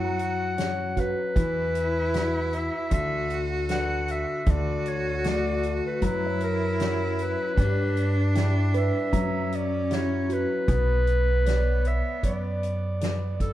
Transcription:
Already playing: upright bass F#2, grand piano F#3, felt piano E4 F#4, cello F#4, clarinet F#5
0.05 felt piano A#5
0.19 closed hi-hat
0.57 grand piano C#4 F#4 C#5, snare, closed hi-hat
0.96 felt piano F#4, clarinet B4, kick, closed hi-hat
1.35 upright bass E2, grand piano E3, cello E4, kick, closed hi-hat
1.75 closed hi-hat
2.14 grand piano E4 F#4 B4, snare, closed hi-hat
2.53 clarinet E5, closed hi-hat
2.91 upright bass D2, grand piano D3, cello F#4, clarinet E5, kick, closed hi-hat
3.30 closed hi-hat
3.69 grand piano D4 A4 B4, clarinet F#5, snare, closed hi-hat
4.08 clarinet E5, closed hi-hat
4.46 upright bass D2, grand piano D3, cello F#4, kick, closed hi-hat
4.50 clarinet D5
4.86 clarinet C#5, closed hi-hat
5.24 grand piano A3 D4 F#4, clarinet D5, snare, closed hi-hat
5.63 closed hi-hat
5.86 clarinet B4
6.02 upright bass F#2, grand piano F#3, cello E4, clarinet B4, felt piano A#5, kick, closed hi-hat
6.26 felt piano C#5
6.40 clarinet A#4, closed hi-hat
6.80 grand piano C#4 F#4 C#5, snare, closed hi-hat
7.19 clarinet B4, closed hi-hat
7.57 upright bass G2, grand piano G3, cello D4, kick, closed hi-hat
7.97 closed hi-hat
8.35 grand piano D4 E4 G4, snare, closed hi-hat
8.74 felt piano B4, clarinet E5, closed hi-hat
9.13 upright bass F#2, grand piano F#3, cello C#4, felt piano A#5, kick, closed hi-hat
9.52 clarinet D5, closed hi-hat
9.90 grand piano E4 F#4 C#5, clarinet C#5, snare, closed hi-hat
10.29 felt piano F#4, clarinet B4, closed hi-hat
10.68 upright bass B1, cello B3, grand piano B3, kick, closed hi-hat
11.07 closed hi-hat
11.46 grand piano B4 C#5 D5, snare, closed hi-hat
11.85 clarinet E5, closed hi-hat
12.23 upright bass F#2, grand piano B4 D5, clarinet D5, kick, closed hi-hat
12.63 closed hi-hat
13.01 grand piano B4 D5, snare, closed hi-hat
13.40 clarinet A4, kick, closed hi-hat

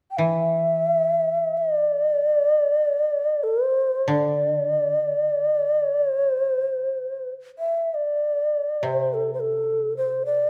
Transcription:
0.11 shakuhachi G5
0.18 koto E3, shakuhachi E5
1.57 shakuhachi D#5
1.76 shakuhachi D5
3.43 shakuhachi A4
3.64 shakuhachi C5
4.08 koto D3, shakuhachi D5
5.87 shakuhachi C#5
6.31 shakuhachi C5
7.59 shakuhachi E5
7.94 shakuhachi D5
8.83 koto C3, shakuhachi C5
9.14 shakuhachi A4
9.34 shakuhachi C5
9.40 shakuhachi A4
9.97 shakuhachi C5
10.25 shakuhachi D5

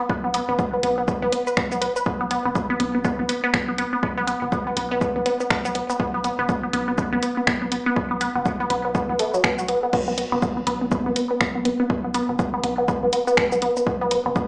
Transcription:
0.09 sub bass B1, synth arpeggio sound B3, kick
0.24 synth arpeggio sound B3
0.34 synth arpeggio sound B3, closed hi-hat, shaker
0.49 sub bass F#1, synth arpeggio sound B3
0.59 synth arpeggio sound B3, kick, shaker
0.73 synth arpeggio sound B3
0.83 sub bass B1, synth arpeggio sound B3, closed hi-hat
0.98 synth arpeggio sound B3
1.08 synth arpeggio sound B3, kick, shaker
1.22 sub bass B1, synth arpeggio sound B3
1.32 synth arpeggio sound B3, closed hi-hat, shaker
1.47 synth arpeggio sound B4, shaker
1.57 sub bass B1, synth arpeggio sound B3, finger snap, kick
1.72 synth arpeggio sound B3, shaker
1.81 synth arpeggio sound B4, closed hi-hat
1.96 synth arpeggio sound B4, shaker
2.06 sub bass B1, synth arpeggio sound B3, kick
2.21 synth arpeggio sound B3
2.31 synth arpeggio sound B3, closed hi-hat, shaker
2.45 sub bass F#1, synth arpeggio sound B3
2.55 synth arpeggio sound B3, kick, shaker
2.70 synth arpeggio sound B3
2.80 sub bass B1, synth arpeggio sound B3, closed hi-hat
2.95 synth arpeggio sound B3
3.05 synth arpeggio sound B3, kick, shaker
3.19 sub bass B1, synth arpeggio sound B3
3.29 synth arpeggio sound B3, closed hi-hat, shaker
3.44 synth arpeggio sound B3
3.54 sub bass B1, synth arpeggio sound B3, finger snap, kick
3.68 synth arpeggio sound B3
3.78 synth arpeggio sound B3, closed hi-hat
3.93 synth arpeggio sound B3
4.03 sub bass B1, synth arpeggio sound B3, kick
4.17 synth arpeggio sound B3
4.27 synth arpeggio sound B3, closed hi-hat, shaker
4.42 sub bass F#1, synth arpeggio sound B3
4.52 synth arpeggio sound B3, kick, shaker
4.67 synth arpeggio sound B3
4.77 sub bass B1, synth arpeggio sound B3, closed hi-hat
4.91 synth arpeggio sound B3
5.01 synth arpeggio sound B3, kick, shaker
5.16 sub bass B1, synth arpeggio sound B3
5.26 synth arpeggio sound B3, closed hi-hat, shaker
5.40 synth arpeggio sound B3, shaker
5.50 sub bass B1, synth arpeggio sound B3, finger snap, kick
5.65 synth arpeggio sound B3, shaker
5.75 synth arpeggio sound B3, closed hi-hat
5.90 synth arpeggio sound B3, shaker
6.00 sub bass B1, synth arpeggio sound B3, kick
6.14 synth arpeggio sound B3
6.24 synth arpeggio sound B3, closed hi-hat, shaker
6.39 sub bass F#1, synth arpeggio sound B3
6.49 synth arpeggio sound B3, kick, shaker
6.63 synth arpeggio sound B3
6.73 sub bass B1, synth arpeggio sound B3, closed hi-hat
6.88 synth arpeggio sound B3
6.98 synth arpeggio sound B3, kick, shaker
7.12 sub bass B1, synth arpeggio sound B3
7.23 synth arpeggio sound B3, closed hi-hat, shaker
7.37 synth arpeggio sound B3
7.47 sub bass B1, synth arpeggio sound B3, finger snap, kick
7.62 synth arpeggio sound B3
7.72 synth arpeggio sound B3, closed hi-hat
7.86 synth arpeggio sound B3
7.96 sub bass B1, synth arpeggio sound B3, kick
8.11 synth arpeggio sound B3
8.21 synth arpeggio sound B3, closed hi-hat, shaker
8.36 sub bass F#1, synth arpeggio sound B3
8.45 synth arpeggio sound B3, kick, shaker
8.60 synth arpeggio sound B3
8.70 sub bass B1, synth arpeggio sound B3, closed hi-hat
8.85 synth arpeggio sound B3
8.95 synth arpeggio sound B3, kick, shaker
9.09 sub bass B1, synth arpeggio sound B3
9.19 synth arpeggio sound A3, closed hi-hat, shaker
9.34 synth arpeggio sound F#3, shaker
9.44 sub bass B1, synth arpeggio sound B3, finger snap, kick
9.58 synth arpeggio sound F#4, shaker
9.68 synth arpeggio sound B3, closed hi-hat
9.83 synth arpeggio sound B3
9.93 sub bass B1, synth arpeggio sound B3, kick, crash
10.08 synth arpeggio sound B3
10.18 synth arpeggio sound B3, closed hi-hat, shaker
10.32 sub bass F#1, synth arpeggio sound B3
10.42 synth arpeggio sound B3, kick, shaker
10.57 synth arpeggio sound B3
10.67 sub bass B1, synth arpeggio sound B3, closed hi-hat
10.81 synth arpeggio sound B3
10.91 synth arpeggio sound B3, kick, shaker
11.06 sub bass B1, synth arpeggio sound B3
11.16 synth arpeggio sound B3, closed hi-hat, shaker
11.31 synth arpeggio sound B3
11.41 sub bass B1, synth arpeggio sound B3, finger snap, kick
11.55 synth arpeggio sound B3
11.65 synth arpeggio sound B3, closed hi-hat
11.80 synth arpeggio sound B3
11.90 sub bass B1, synth arpeggio sound B3, kick
12.04 synth arpeggio sound B3
12.14 synth arpeggio sound B3, closed hi-hat, shaker
12.29 sub bass F#1, synth arpeggio sound B3
12.39 synth arpeggio sound B3, kick, shaker
12.54 synth arpeggio sound B3
12.64 sub bass B1, synth arpeggio sound B3, closed hi-hat
12.78 synth arpeggio sound B3
12.88 synth arpeggio sound B3, kick, shaker
13.03 sub bass B1, synth arpeggio sound B3
13.13 synth arpeggio sound B3, closed hi-hat, shaker
13.27 synth arpeggio sound B3, shaker
13.37 sub bass B1, synth arpeggio sound B3, finger snap, kick
13.52 synth arpeggio sound B3, shaker
13.62 synth arpeggio sound B3, closed hi-hat
13.77 synth arpeggio sound B3, shaker
13.87 sub bass B1, synth arpeggio sound B3, kick
14.01 synth arpeggio sound B3
14.11 synth arpeggio sound B3, closed hi-hat, shaker
14.26 sub bass F#1, synth arpeggio sound B3
14.36 synth arpeggio sound B3, kick, shaker

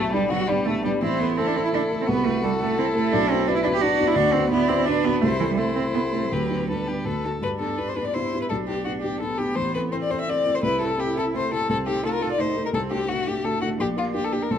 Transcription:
Already playing: grand piano B1, violin A3
0.11 cello G3, violin G3, grand piano G3 B3 D4
0.29 cello F#3, grand piano G3 B3 D4, violin F#4
0.47 cello G3, violin G3, grand piano G3 B3 D4
0.65 grand piano G3 B3 D4, cello A3, violin A3
0.82 cello G3, violin G3, grand piano G3 B3 D4
0.86 violin G3
1.02 grand piano A1, cello C4, violin E4 C5
1.19 grand piano A3 E4 A4, cello B3
1.37 grand piano A3 E4 A4, cello C4, violin E4 A4
1.47 cello D4
1.55 grand piano A3 E4 A4, cello C4
1.65 cello E4
1.72 grand piano A3 E4 A4, cello D4, violin A4
1.91 grand piano A3 E4 A4
2.01 cello C4
2.07 grand piano C2, cello B3, violin F#4 B4
2.25 grand piano A3 E4 A4, cello A3
2.42 cello G3, grand piano A3 E4 A4, violin A4
2.60 grand piano A3 E4 A4, cello A3
2.78 grand piano A3 E4 A4, cello C4, violin E4
2.95 cello A3, grand piano A3 E4 A4
3.12 grand piano B1, cello D4
3.30 grand piano B3 D4 F#4, cello C4
3.47 grand piano B3 D4 F#4, cello D4, violin E4 B4
3.55 cello E4
3.64 grand piano B3 D4 F#4, cello D4
3.73 cello G4
3.81 grand piano B3 D4 F#4, violin D4 D5, cello F#4
4.00 grand piano B3 D4 F#4
4.07 cello E4
4.15 grand piano D2, cello D4, violin F#4
4.32 grand piano B3 D4 F#4, cello C4
4.50 cello B3, grand piano B3 D4 F#4, violin E4 D5
4.68 grand piano B3 D4 F#4, cello C4
4.86 grand piano B3 D4 F#4, cello D4, violin D4 B4
5.04 cello B3, grand piano B3 D4 F#4
5.21 grand piano C2, cello A3, violin E4 C5
5.40 cello E3, grand piano C4 E4 A4
5.49 cello G3
5.57 cello A3, grand piano C4 E4 A4, violin E4 C5
5.75 cello C4, grand piano C4 E4 A4
5.94 cello B3, grand piano C4 E4 A4
6.12 cello A3, grand piano C4 E4 A4
6.24 cello F#3
6.31 grand piano D2, cello F#3, violin G4 B4
6.50 grand piano B3 D4 B4
6.69 cello G3, grand piano B3 D4 B4, violin A4 B4
6.87 grand piano B3 D4 B4, violin G4
7.05 grand piano D2, violin A4 B4
7.24 grand piano A3 D4 F#4, violin A4
7.41 grand piano G2, cello D4, violin B4
7.60 grand piano B3 D4 G4, violin A4
7.78 grand piano B3 D4 G4, violin B4
7.88 violin C5
7.96 grand piano B3 D4 G4, violin B4
8.05 violin D5
8.14 grand piano B3 D4 G4, cello E4, violin C5
8.34 grand piano B3 D4 G4
8.41 violin B4
8.49 grand piano B1, cello D4, violin A4
8.68 grand piano B3 D4 G4, violin G4
8.85 grand piano B3 D4 G4, violin F#4
9.02 grand piano B3 D4 G4, violin G4
9.21 cello B3, grand piano B3 D4 G4, violin A4
9.38 grand piano B3 D4 G4, violin G4
9.56 grand piano A1, violin C5
9.74 grand piano C4 E4 A4, violin B4
9.91 cello C4, grand piano C4 E4 A4, violin C5
10.03 violin D5
10.10 grand piano C4 E4 A4, violin C5
10.21 violin E5
10.27 grand piano C4 E4, violin D5
10.45 grand piano C4 E4 A4
10.55 violin C5
10.62 grand piano C2, cello E4, violin B4
10.80 grand piano C4 E4 A4, violin A4
10.97 grand piano C4 E4 A4, cello E4, violin G4
11.15 grand piano C4 E4 A4, violin A4
11.34 cello A3, grand piano C4 E4 A4, violin C5
11.52 grand piano C4 E4 A4, violin A4
11.69 grand piano C2, cello C4, violin A4
11.86 grand piano A3 D#4 A4, violin G4
12.04 grand piano A3 D#4 A4, cello F4, violin A4
12.14 violin A#4
12.21 grand piano A3 D#4 A4, violin A4
12.32 violin D5
12.38 grand piano A3 D#4 A4, cello D#4, violin C5
12.56 grand piano A3 D#4 A4
12.66 violin A#4
12.73 grand piano C2, cello C4, violin A4
12.90 grand piano A3 D4 F#4, violin G4
13.09 cello A3, grand piano A3 D4 F#4, violin F#4
13.27 grand piano A3 D4 F#4, violin G4
13.44 grand piano A3 D4 F#4, violin A4
13.62 grand piano A3 D4 F#4, violin F#4
13.78 grand piano A#1, cello D4, violin G4
13.97 grand piano A#3 D4 G4, violin F4
14.14 grand piano A#3 D4 G4, violin G4
14.25 violin A4
14.33 grand piano A#3 D4 G4, violin G4
14.43 violin A#4
14.50 grand piano C2, cello C4, violin A4

